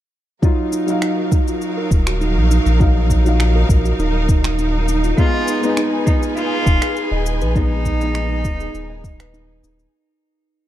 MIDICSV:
0, 0, Header, 1, 7, 480
1, 0, Start_track
1, 0, Key_signature, -6, "minor"
1, 0, Tempo, 594059
1, 346, Time_signature, 4, 2, 24, 8
1, 8629, End_track
2, 0, Start_track
2, 0, Title_t, "String section"
2, 0, Program_c, 0, 48
2, 353, Note_on_c, 0, 63, 82
2, 353, Note_on_c, 0, 70, 76
2, 354, Note_on_c, 0, 54, 72
2, 356, Note_on_c, 0, 77, 89
2, 4157, Note_off_c, 0, 54, 0
2, 4157, Note_off_c, 0, 70, 0
2, 4159, Note_off_c, 0, 77, 0
2, 4183, Note_on_c, 0, 68, 77
2, 4184, Note_on_c, 0, 71, 80
2, 4186, Note_on_c, 0, 80, 95
2, 7992, Note_off_c, 0, 68, 0
2, 7993, Note_off_c, 0, 71, 0
2, 7994, Note_off_c, 0, 80, 0
2, 7997, Note_off_c, 0, 63, 0
2, 8629, End_track
3, 0, Start_track
3, 0, Title_t, "Cello"
3, 0, Program_c, 1, 42
3, 4185, Note_on_c, 1, 65, 112
3, 4633, Note_off_c, 1, 65, 0
3, 4901, Note_on_c, 1, 63, 83
3, 5010, Note_off_c, 1, 63, 0
3, 5138, Note_on_c, 1, 65, 114
3, 5830, Note_off_c, 1, 65, 0
3, 6101, Note_on_c, 1, 63, 118
3, 7751, Note_off_c, 1, 63, 0
3, 8629, End_track
4, 0, Start_track
4, 0, Title_t, "Steel tongue drum"
4, 0, Program_c, 2, 114
4, 344, Note_on_c, 2, 63, 94
4, 574, Note_off_c, 2, 63, 0
4, 585, Note_on_c, 2, 63, 80
4, 814, Note_off_c, 2, 63, 0
4, 826, Note_on_c, 2, 63, 76
4, 945, Note_off_c, 2, 63, 0
4, 1067, Note_on_c, 2, 63, 72
4, 1185, Note_off_c, 2, 63, 0
4, 1193, Note_on_c, 2, 65, 69
4, 1419, Note_off_c, 2, 65, 0
4, 1434, Note_on_c, 2, 70, 69
4, 1542, Note_off_c, 2, 70, 0
4, 1671, Note_on_c, 2, 66, 72
4, 1780, Note_off_c, 2, 66, 0
4, 1785, Note_on_c, 2, 63, 92
4, 2014, Note_off_c, 2, 63, 0
4, 2027, Note_on_c, 2, 63, 93
4, 2255, Note_off_c, 2, 63, 0
4, 2268, Note_on_c, 2, 63, 77
4, 2386, Note_off_c, 2, 63, 0
4, 2510, Note_on_c, 2, 63, 67
4, 2627, Note_off_c, 2, 63, 0
4, 2632, Note_on_c, 2, 65, 66
4, 2859, Note_off_c, 2, 65, 0
4, 2873, Note_on_c, 2, 70, 75
4, 2981, Note_off_c, 2, 70, 0
4, 3112, Note_on_c, 2, 66, 73
4, 3221, Note_off_c, 2, 66, 0
4, 3227, Note_on_c, 2, 63, 94
4, 3455, Note_off_c, 2, 63, 0
4, 3468, Note_on_c, 2, 63, 93
4, 3695, Note_off_c, 2, 63, 0
4, 3708, Note_on_c, 2, 63, 77
4, 3826, Note_off_c, 2, 63, 0
4, 3951, Note_on_c, 2, 63, 75
4, 4067, Note_off_c, 2, 63, 0
4, 4073, Note_on_c, 2, 65, 74
4, 4187, Note_off_c, 2, 65, 0
4, 4313, Note_on_c, 2, 75, 66
4, 4421, Note_off_c, 2, 75, 0
4, 4552, Note_on_c, 2, 71, 76
4, 4661, Note_off_c, 2, 71, 0
4, 4665, Note_on_c, 2, 63, 102
4, 4894, Note_off_c, 2, 63, 0
4, 4908, Note_on_c, 2, 63, 94
4, 5135, Note_off_c, 2, 63, 0
4, 5149, Note_on_c, 2, 63, 77
4, 5266, Note_off_c, 2, 63, 0
4, 5389, Note_on_c, 2, 63, 74
4, 5506, Note_off_c, 2, 63, 0
4, 5514, Note_on_c, 2, 68, 75
4, 5740, Note_off_c, 2, 68, 0
4, 5753, Note_on_c, 2, 75, 73
4, 5861, Note_off_c, 2, 75, 0
4, 5995, Note_on_c, 2, 71, 70
4, 6102, Note_off_c, 2, 71, 0
4, 6110, Note_on_c, 2, 63, 88
4, 6337, Note_off_c, 2, 63, 0
4, 6348, Note_on_c, 2, 63, 92
4, 6575, Note_off_c, 2, 63, 0
4, 6954, Note_on_c, 2, 68, 74
4, 7180, Note_off_c, 2, 68, 0
4, 7192, Note_on_c, 2, 75, 75
4, 7300, Note_off_c, 2, 75, 0
4, 7432, Note_on_c, 2, 71, 80
4, 7540, Note_off_c, 2, 71, 0
4, 7545, Note_on_c, 2, 63, 96
4, 7774, Note_off_c, 2, 63, 0
4, 7788, Note_on_c, 2, 63, 98
4, 8015, Note_off_c, 2, 63, 0
4, 8629, End_track
5, 0, Start_track
5, 0, Title_t, "Felt piano"
5, 0, Program_c, 3, 0
5, 341, Note_on_c, 3, 54, 78
5, 353, Note_on_c, 3, 63, 78
5, 358, Note_on_c, 3, 65, 91
5, 518, Control_c, 3, 64, 127
5, 679, Note_off_c, 3, 54, 0
5, 684, Note_off_c, 3, 63, 0
5, 687, Note_off_c, 3, 65, 0
5, 697, Note_on_c, 3, 54, 74
5, 712, Note_on_c, 3, 63, 70
5, 729, Note_on_c, 3, 77, 85
5, 2231, Note_off_c, 3, 54, 0
5, 2239, Note_off_c, 3, 63, 0
5, 2247, Note_off_c, 3, 77, 0
5, 2258, Note_on_c, 3, 54, 83
5, 2266, Note_on_c, 3, 63, 75
5, 2276, Note_on_c, 3, 77, 87
5, 2597, Note_off_c, 3, 54, 0
5, 2601, Note_off_c, 3, 63, 0
5, 2606, Note_off_c, 3, 77, 0
5, 2620, Note_on_c, 3, 54, 79
5, 2637, Note_on_c, 3, 63, 77
5, 2654, Note_on_c, 3, 77, 83
5, 4153, Note_off_c, 3, 54, 0
5, 4161, Note_off_c, 3, 63, 0
5, 4170, Note_off_c, 3, 77, 0
5, 4177, Note_on_c, 3, 56, 86
5, 4186, Note_on_c, 3, 59, 79
5, 4196, Note_on_c, 3, 63, 93
5, 4197, Control_c, 3, 64, 0
5, 4349, Control_c, 3, 64, 127
5, 4517, Note_off_c, 3, 56, 0
5, 4521, Note_off_c, 3, 59, 0
5, 4526, Note_off_c, 3, 63, 0
5, 4534, Note_on_c, 3, 56, 82
5, 4548, Note_on_c, 3, 59, 77
5, 4566, Note_on_c, 3, 63, 88
5, 6070, Note_off_c, 3, 56, 0
5, 6077, Note_off_c, 3, 59, 0
5, 6086, Note_off_c, 3, 63, 0
5, 6099, Note_on_c, 3, 56, 84
5, 6109, Note_on_c, 3, 59, 79
5, 6117, Note_on_c, 3, 63, 99
5, 6437, Note_off_c, 3, 56, 0
5, 6443, Note_off_c, 3, 59, 0
5, 6446, Note_off_c, 3, 63, 0
5, 6458, Note_on_c, 3, 56, 84
5, 6473, Note_on_c, 3, 59, 82
5, 6491, Note_on_c, 3, 63, 91
5, 7992, Note_off_c, 3, 56, 0
5, 7999, Note_off_c, 3, 59, 0
5, 8008, Note_off_c, 3, 63, 0
5, 8036, Control_c, 3, 64, 0
5, 8629, End_track
6, 0, Start_track
6, 0, Title_t, "Analog synth bass"
6, 0, Program_c, 4, 38
6, 1543, Note_on_c, 4, 27, 89
6, 1910, Note_on_c, 4, 34, 96
6, 1922, Note_off_c, 4, 27, 0
6, 2095, Note_off_c, 4, 34, 0
6, 2149, Note_on_c, 4, 34, 83
6, 2944, Note_off_c, 4, 34, 0
6, 2983, Note_on_c, 4, 34, 99
6, 3174, Note_off_c, 4, 34, 0
6, 3222, Note_on_c, 4, 27, 89
6, 4144, Note_off_c, 4, 27, 0
6, 5384, Note_on_c, 4, 27, 88
6, 5482, Note_off_c, 4, 27, 0
6, 5749, Note_on_c, 4, 27, 95
6, 5988, Note_on_c, 4, 34, 82
6, 6000, Note_off_c, 4, 27, 0
6, 6824, Note_on_c, 4, 27, 97
6, 6836, Note_off_c, 4, 34, 0
6, 7014, Note_off_c, 4, 27, 0
6, 7065, Note_on_c, 4, 27, 92
6, 7779, Note_off_c, 4, 27, 0
6, 7784, Note_on_c, 4, 27, 87
6, 7974, Note_off_c, 4, 27, 0
6, 8629, End_track
7, 0, Start_track
7, 0, Title_t, "Drums"
7, 345, Note_on_c, 9, 36, 110
7, 348, Note_on_c, 9, 82, 31
7, 426, Note_off_c, 9, 36, 0
7, 429, Note_off_c, 9, 82, 0
7, 586, Note_on_c, 9, 82, 68
7, 667, Note_off_c, 9, 82, 0
7, 710, Note_on_c, 9, 82, 40
7, 791, Note_off_c, 9, 82, 0
7, 824, Note_on_c, 9, 26, 69
7, 825, Note_on_c, 9, 82, 30
7, 905, Note_off_c, 9, 26, 0
7, 906, Note_off_c, 9, 82, 0
7, 1065, Note_on_c, 9, 36, 96
7, 1065, Note_on_c, 9, 82, 71
7, 1146, Note_off_c, 9, 36, 0
7, 1146, Note_off_c, 9, 82, 0
7, 1193, Note_on_c, 9, 82, 40
7, 1274, Note_off_c, 9, 82, 0
7, 1305, Note_on_c, 9, 82, 32
7, 1386, Note_off_c, 9, 82, 0
7, 1545, Note_on_c, 9, 36, 92
7, 1547, Note_on_c, 9, 82, 73
7, 1626, Note_off_c, 9, 36, 0
7, 1628, Note_off_c, 9, 82, 0
7, 1671, Note_on_c, 9, 26, 79
7, 1673, Note_on_c, 9, 82, 41
7, 1752, Note_off_c, 9, 26, 0
7, 1754, Note_off_c, 9, 82, 0
7, 1788, Note_on_c, 9, 82, 30
7, 1869, Note_off_c, 9, 82, 0
7, 2028, Note_on_c, 9, 82, 68
7, 2109, Note_off_c, 9, 82, 0
7, 2152, Note_on_c, 9, 82, 37
7, 2233, Note_off_c, 9, 82, 0
7, 2266, Note_on_c, 9, 36, 110
7, 2268, Note_on_c, 9, 82, 33
7, 2346, Note_off_c, 9, 36, 0
7, 2349, Note_off_c, 9, 82, 0
7, 2505, Note_on_c, 9, 36, 55
7, 2508, Note_on_c, 9, 82, 75
7, 2585, Note_off_c, 9, 36, 0
7, 2589, Note_off_c, 9, 82, 0
7, 2634, Note_on_c, 9, 82, 41
7, 2715, Note_off_c, 9, 82, 0
7, 2746, Note_on_c, 9, 26, 78
7, 2747, Note_on_c, 9, 82, 32
7, 2827, Note_off_c, 9, 26, 0
7, 2828, Note_off_c, 9, 82, 0
7, 2984, Note_on_c, 9, 36, 110
7, 2988, Note_on_c, 9, 82, 80
7, 3065, Note_off_c, 9, 36, 0
7, 3069, Note_off_c, 9, 82, 0
7, 3114, Note_on_c, 9, 82, 41
7, 3195, Note_off_c, 9, 82, 0
7, 3228, Note_on_c, 9, 82, 34
7, 3309, Note_off_c, 9, 82, 0
7, 3465, Note_on_c, 9, 36, 95
7, 3466, Note_on_c, 9, 82, 71
7, 3546, Note_off_c, 9, 36, 0
7, 3546, Note_off_c, 9, 82, 0
7, 3591, Note_on_c, 9, 26, 76
7, 3592, Note_on_c, 9, 82, 45
7, 3671, Note_off_c, 9, 26, 0
7, 3673, Note_off_c, 9, 82, 0
7, 3705, Note_on_c, 9, 82, 33
7, 3786, Note_off_c, 9, 82, 0
7, 3946, Note_on_c, 9, 82, 77
7, 4027, Note_off_c, 9, 82, 0
7, 4071, Note_on_c, 9, 82, 40
7, 4152, Note_off_c, 9, 82, 0
7, 4185, Note_on_c, 9, 36, 116
7, 4186, Note_on_c, 9, 82, 34
7, 4265, Note_off_c, 9, 36, 0
7, 4267, Note_off_c, 9, 82, 0
7, 4425, Note_on_c, 9, 82, 78
7, 4506, Note_off_c, 9, 82, 0
7, 4552, Note_on_c, 9, 82, 42
7, 4632, Note_off_c, 9, 82, 0
7, 4663, Note_on_c, 9, 26, 72
7, 4665, Note_on_c, 9, 82, 35
7, 4744, Note_off_c, 9, 26, 0
7, 4746, Note_off_c, 9, 82, 0
7, 4904, Note_on_c, 9, 36, 110
7, 4905, Note_on_c, 9, 82, 80
7, 4985, Note_off_c, 9, 36, 0
7, 4986, Note_off_c, 9, 82, 0
7, 5031, Note_on_c, 9, 82, 45
7, 5112, Note_off_c, 9, 82, 0
7, 5146, Note_on_c, 9, 82, 33
7, 5227, Note_off_c, 9, 82, 0
7, 5385, Note_on_c, 9, 36, 101
7, 5388, Note_on_c, 9, 82, 81
7, 5466, Note_off_c, 9, 36, 0
7, 5468, Note_off_c, 9, 82, 0
7, 5510, Note_on_c, 9, 26, 78
7, 5512, Note_on_c, 9, 82, 43
7, 5591, Note_off_c, 9, 26, 0
7, 5592, Note_off_c, 9, 82, 0
7, 5627, Note_on_c, 9, 82, 32
7, 5708, Note_off_c, 9, 82, 0
7, 5866, Note_on_c, 9, 82, 74
7, 5947, Note_off_c, 9, 82, 0
7, 5990, Note_on_c, 9, 82, 42
7, 6071, Note_off_c, 9, 82, 0
7, 6105, Note_on_c, 9, 36, 119
7, 6107, Note_on_c, 9, 82, 35
7, 6186, Note_off_c, 9, 36, 0
7, 6188, Note_off_c, 9, 82, 0
7, 6345, Note_on_c, 9, 36, 58
7, 6347, Note_on_c, 9, 82, 75
7, 6426, Note_off_c, 9, 36, 0
7, 6428, Note_off_c, 9, 82, 0
7, 6473, Note_on_c, 9, 82, 42
7, 6554, Note_off_c, 9, 82, 0
7, 6585, Note_on_c, 9, 26, 76
7, 6586, Note_on_c, 9, 82, 32
7, 6666, Note_off_c, 9, 26, 0
7, 6667, Note_off_c, 9, 82, 0
7, 6824, Note_on_c, 9, 82, 80
7, 6825, Note_on_c, 9, 36, 109
7, 6905, Note_off_c, 9, 82, 0
7, 6906, Note_off_c, 9, 36, 0
7, 6951, Note_on_c, 9, 82, 44
7, 7032, Note_off_c, 9, 82, 0
7, 7067, Note_on_c, 9, 82, 36
7, 7148, Note_off_c, 9, 82, 0
7, 7305, Note_on_c, 9, 36, 97
7, 7308, Note_on_c, 9, 82, 79
7, 7385, Note_off_c, 9, 36, 0
7, 7389, Note_off_c, 9, 82, 0
7, 7433, Note_on_c, 9, 26, 79
7, 7435, Note_on_c, 9, 82, 46
7, 7514, Note_off_c, 9, 26, 0
7, 7515, Note_off_c, 9, 82, 0
7, 7549, Note_on_c, 9, 82, 33
7, 7629, Note_off_c, 9, 82, 0
7, 7788, Note_on_c, 9, 82, 78
7, 7869, Note_off_c, 9, 82, 0
7, 7913, Note_on_c, 9, 82, 40
7, 7994, Note_off_c, 9, 82, 0
7, 8629, End_track
0, 0, End_of_file